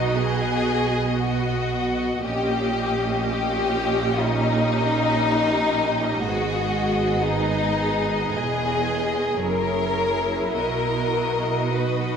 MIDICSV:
0, 0, Header, 1, 6, 480
1, 0, Start_track
1, 0, Key_signature, 5, "major"
1, 0, Tempo, 1047120
1, 1024, Time_signature, 4, 2, 24, 8
1, 1024, Tempo, 1011804
1, 1984, Tempo, 988468
1, 3424, Tempo, 1094891
1, 4384, Tempo, 1153846
1, 5530, End_track
2, 0, Start_track
2, 0, Title_t, "Violin section"
2, 0, Program_c, 0, 48
2, 0, Note_on_c, 0, 75, 47
2, 1005, Note_off_c, 0, 75, 0
2, 1029, Note_on_c, 0, 75, 44
2, 4369, Note_off_c, 0, 75, 0
2, 4387, Note_on_c, 0, 73, 45
2, 4854, Note_on_c, 0, 75, 36
2, 4859, Note_off_c, 0, 73, 0
2, 5530, Note_off_c, 0, 75, 0
2, 5530, End_track
3, 0, Start_track
3, 0, Title_t, "Violin section"
3, 0, Program_c, 1, 48
3, 0, Note_on_c, 1, 63, 66
3, 69, Note_off_c, 1, 63, 0
3, 69, Note_on_c, 1, 68, 78
3, 550, Note_off_c, 1, 68, 0
3, 552, Note_on_c, 1, 66, 62
3, 1025, Note_off_c, 1, 66, 0
3, 1026, Note_on_c, 1, 67, 69
3, 1495, Note_off_c, 1, 67, 0
3, 1507, Note_on_c, 1, 67, 79
3, 1975, Note_off_c, 1, 67, 0
3, 1982, Note_on_c, 1, 63, 82
3, 2943, Note_off_c, 1, 63, 0
3, 2945, Note_on_c, 1, 66, 71
3, 3415, Note_off_c, 1, 66, 0
3, 3421, Note_on_c, 1, 63, 75
3, 3906, Note_off_c, 1, 63, 0
3, 3911, Note_on_c, 1, 68, 70
3, 4381, Note_on_c, 1, 70, 75
3, 4386, Note_off_c, 1, 68, 0
3, 4855, Note_off_c, 1, 70, 0
3, 4860, Note_on_c, 1, 70, 69
3, 5335, Note_off_c, 1, 70, 0
3, 5346, Note_on_c, 1, 71, 47
3, 5530, Note_off_c, 1, 71, 0
3, 5530, End_track
4, 0, Start_track
4, 0, Title_t, "Viola section"
4, 0, Program_c, 2, 48
4, 0, Note_on_c, 2, 59, 51
4, 0, Note_on_c, 2, 66, 50
4, 1006, Note_off_c, 2, 59, 0
4, 1007, Note_off_c, 2, 66, 0
4, 1027, Note_on_c, 2, 61, 54
4, 1027, Note_on_c, 2, 67, 54
4, 2926, Note_off_c, 2, 61, 0
4, 2926, Note_off_c, 2, 67, 0
4, 2948, Note_on_c, 2, 59, 53
4, 2949, Note_on_c, 2, 68, 56
4, 4369, Note_off_c, 2, 59, 0
4, 4384, Note_on_c, 2, 64, 50
4, 4843, Note_off_c, 2, 68, 0
4, 4860, Note_on_c, 2, 66, 43
4, 5344, Note_off_c, 2, 64, 0
4, 5348, Note_on_c, 2, 63, 40
4, 5530, Note_off_c, 2, 63, 0
4, 5530, Note_off_c, 2, 66, 0
4, 5530, End_track
5, 0, Start_track
5, 0, Title_t, "Cello section"
5, 0, Program_c, 3, 48
5, 0, Note_on_c, 3, 47, 47
5, 1006, Note_off_c, 3, 47, 0
5, 1023, Note_on_c, 3, 46, 56
5, 2924, Note_off_c, 3, 46, 0
5, 2944, Note_on_c, 3, 44, 57
5, 3890, Note_off_c, 3, 44, 0
5, 3911, Note_on_c, 3, 40, 54
5, 4386, Note_off_c, 3, 40, 0
5, 4387, Note_on_c, 3, 42, 43
5, 4850, Note_off_c, 3, 42, 0
5, 4861, Note_on_c, 3, 47, 42
5, 5530, Note_off_c, 3, 47, 0
5, 5530, End_track
6, 0, Start_track
6, 0, Title_t, "Double bass section"
6, 0, Program_c, 4, 48
6, 0, Note_on_c, 4, 35, 55
6, 1004, Note_off_c, 4, 35, 0
6, 1024, Note_on_c, 4, 34, 60
6, 2924, Note_off_c, 4, 34, 0
6, 2949, Note_on_c, 4, 32, 61
6, 3893, Note_off_c, 4, 32, 0
6, 3915, Note_on_c, 4, 28, 55
6, 4388, Note_off_c, 4, 28, 0
6, 4390, Note_on_c, 4, 30, 47
6, 4851, Note_off_c, 4, 30, 0
6, 4861, Note_on_c, 4, 35, 50
6, 5530, Note_off_c, 4, 35, 0
6, 5530, End_track
0, 0, End_of_file